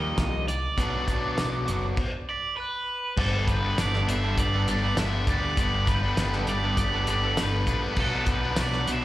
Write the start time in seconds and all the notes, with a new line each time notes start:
Already playing: D#2 D#3 F3 G3 A#3 D#4 G4 D#5
0.18 C2, kick, snare, closed hi-hat, tambourine
0.48 D5, closed hi-hat
0.77 B1 B2 F#3 B3 D4 F#4, kick, closed hi-hat
0.81 D4
1.08 kick, closed hi-hat
1.38 B1, snare, closed hi-hat, tambourine
1.66 F#1 F#3 B3 D4 F#4, closed hi-hat
1.70 B2
1.97 kick, crash
2.29 D5 B6
2.57 B4 F#6
3.17 G1 G2 D3 G3 B3 D4 A4 B4 G5 D6, kick, crash
3.33 G3 B3 D4, muted clean electric guitar stroke
3.47 B4 G6, kick, closed hi-hat
3.63 G3 B3 D4
3.77 G1 G2 D3 G3 B3 D4 D5, muted clean electric guitar stroke, snare, closed hi-hat, tambourine
3.82 B6
3.93 G3 B3 D4 A4, snare
4.07 G1 D3 G3 B3 D4 E5, closed hi-hat
4.11 C7
4.22 G3 B3 D4 A4
4.38 G1 D5 B6, muted clean electric guitar stroke, kick, closed hi-hat
4.53 G3 B3 D4 A4
4.66 G1 D3 G3 B3 D4 D5, closed hi-hat
4.74 B6
4.82 G3 B3 D4 A4
4.97 G1 G2 D3 G3 B3 D4 E5, snare, closed hi-hat, tambourine
5.04 B6
5.13 muted clean electric guitar stroke
5.27 D2 D3 G3 B3 D4 D5, kick, closed hi-hat
5.36 B6
5.42 G3 B3 D4
5.57 G1 G2 D3 G3 B3 D4 D5, kick, closed hi-hat
5.64 B6
5.72 G3 B3 D4, muted clean electric guitar stroke
5.87 B4, kick, snare, closed hi-hat
5.95 G6
6.03 G3 B3 D4
6.17 G1 G2 D3 G3 B3 D4, muted clean electric guitar stroke, snare, closed hi-hat, tambourine
6.32 G3 B3 D4 A4, snare
6.47 G1 D3 G3 B3 D4 D5, closed hi-hat
6.54 B6
6.62 G3 B3 D4 A4
6.77 G1 D5, muted clean electric guitar stroke, kick, closed hi-hat
6.84 B6
6.92 G3 B3 D4 A4
6.96 G3
7.07 G1 D3 G3 B3 D4 D5, closed hi-hat
7.16 B6
7.22 G3 B3 D4 A4
7.37 G1 G2 D3 G3 B3 D4, snare, closed hi-hat, tambourine
7.41 B4 G6
7.53 muted clean electric guitar stroke
7.67 A#1 D3 G3 B3 D4, kick, closed hi-hat
7.82 G3 B3 D4
7.96 B1 B2 F#3 B3 D4 F#4 A4 B4 D6, kick, crash
8.04 F#6
8.13 F#3 B3 D4, muted clean electric guitar stroke
8.26 kick, snare, closed hi-hat
8.32 B4 G6
8.43 F#3 B3 D4
8.56 B1 B2 F#3 B3 D4, muted clean electric guitar stroke, snare, closed hi-hat, tambourine
8.61 D5 B6
8.72 F#3 B3 D4 F#4, snare
8.87 B1 B2 F#3 B3 D4, closed hi-hat
8.92 E5 C7
9.01 D4